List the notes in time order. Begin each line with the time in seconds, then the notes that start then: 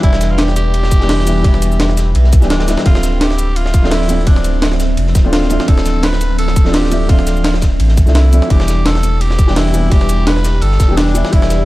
Already playing: G3 B3 D4 E4 G4 B4
0.00 E1 E3 G3 B3 E4 E5, kick, closed hi-hat, ride
0.05 D4 E4
0.13 snare
0.21 snare, closed hi-hat, ride, shaker
0.30 F4
0.38 G4, snare, closed hi-hat, ride
0.48 snare
0.56 G4, closed hi-hat, ride, shaker
0.74 closed hi-hat, ride
0.83 snare
0.91 kick, closed hi-hat, ride, shaker
0.99 E3 G3 B3 D4 G4, snare
1.09 snare, closed hi-hat, open hi-hat
1.19 snare
1.25 E3 G3 B3 D4 E4, closed hi-hat, ride, shaker
1.41 E1 E3 G3 B3, kick, closed hi-hat, ride
1.46 D4 E4
1.54 snare
1.62 closed hi-hat, ride, shaker
1.72 shaker
1.80 snare, closed hi-hat, ride
1.89 snare
1.97 snare, closed hi-hat, ride, shaker
2.15 B1, closed hi-hat, ride
2.24 snare
2.33 kick, closed hi-hat, ride, shaker
2.41 D1 E3 G3 B3 D4 G4, snare, shaker
2.50 D4, snare, closed hi-hat, ride
2.60 snare, ride
2.66 E3 G3 B3 D4 E4, snare, closed hi-hat, ride, shaker
2.77 snare, ride
2.82 D1 F3 A3 C4 F4 E5, kick, closed hi-hat, ride
2.87 D4 E5
2.95 snare
3.03 snare, closed hi-hat, ride, shaker
3.21 G4, snare, closed hi-hat, ride
3.30 snare
3.38 closed hi-hat, ride, shaker
3.56 F4, closed hi-hat, ride
3.66 snare
3.74 kick, closed hi-hat, ride, shaker
3.82 F3 A3 C4 D4 F4, snare
3.91 E4, snare, closed hi-hat, open hi-hat, ride
4.01 snare
4.08 F3 A3 C4 D4 E4, closed hi-hat, ride, shaker
4.24 D1 F3 A3 C4 D4, kick, closed hi-hat, ride
4.29 D4 E4
4.36 snare
4.44 closed hi-hat, ride, shaker
4.62 snare, closed hi-hat, ride
4.71 snare
4.80 snare, closed hi-hat, ride, shaker
4.97 F1, closed hi-hat, ride
5.07 snare
5.15 D1, kick, snare, closed hi-hat, ride, shaker
5.23 F3 A3 C4 D4 F4
5.33 F4, snare, closed hi-hat, ride
5.42 snare
5.49 F3 A3 C4 D4 E4, closed hi-hat, ride, shaker
5.60 snare
5.65 D1 F3 A3 C4 A4, kick, closed hi-hat, ride
5.70 D4 E4
5.78 snare
5.85 snare, closed hi-hat, ride, shaker
6.03 B4, snare, closed hi-hat, ride
6.12 snare
6.21 closed hi-hat, ride, shaker
6.38 A4, closed hi-hat, ride
6.47 snare
6.56 kick, closed hi-hat, ride, shaker
6.64 F3 A3 C4 D4 F4, snare
6.73 G4, snare, closed hi-hat, open hi-hat, ride
6.84 snare
6.90 F3 A3 C4 D4 E4, closed hi-hat, ride, shaker
7.06 D1 F3 A3 C4 F4, kick, closed hi-hat, ride
7.11 D4 E5
7.19 snare
7.26 snare, closed hi-hat, ride, shaker
7.36 shaker
7.44 snare, closed hi-hat, ride
7.54 snare
7.61 kick, snare, closed hi-hat, ride, shaker
7.80 A1, closed hi-hat, ride
7.88 snare
7.97 kick, closed hi-hat, ride, shaker
8.05 C2 F3 A3 C4 D4 E4, snare, shaker
8.15 E4, snare, closed hi-hat, ride
8.31 F3 A3 C4 D4 E4, closed hi-hat, shaker
8.42 snare
8.47 E1 E3 G3 B3 G4 B4 D5, kick, closed hi-hat, ride
8.52 D4 E4
8.60 snare
8.68 snare, closed hi-hat, ride, shaker
8.85 A4, snare, closed hi-hat, ride
8.95 snare
9.03 closed hi-hat, ride, shaker
9.21 G4, closed hi-hat, ride
9.31 snare
9.39 kick, closed hi-hat, ride, shaker
9.47 E3 G3 B3 D4 G4, snare
9.56 E4, snare, closed hi-hat, open hi-hat, ride
9.65 snare
9.72 E3 G3 B3 D4 E4, closed hi-hat, ride, shaker
9.88 E1 E3 G3 B3 G4, kick, closed hi-hat, ride
9.93 D4 E4
10.01 snare
10.09 closed hi-hat, ride, shaker
10.27 B4, snare, closed hi-hat, ride
10.36 snare
10.44 snare, closed hi-hat, ride, shaker
10.61 G1 A4, closed hi-hat, ride
10.71 snare
10.80 E1, kick, snare, closed hi-hat, ride, shaker
10.88 E3 G3 B3 D4 G4
10.97 D4, snare, closed hi-hat, ride
11.07 snare
11.14 E3 G3 B3 D4 E4, closed hi-hat, ride, shaker
11.25 snare
11.29 E1 E3 G3 B3 E4, kick, closed hi-hat, ride
11.34 D4 E4
11.42 snare
11.50 snare, closed hi-hat, ride, shaker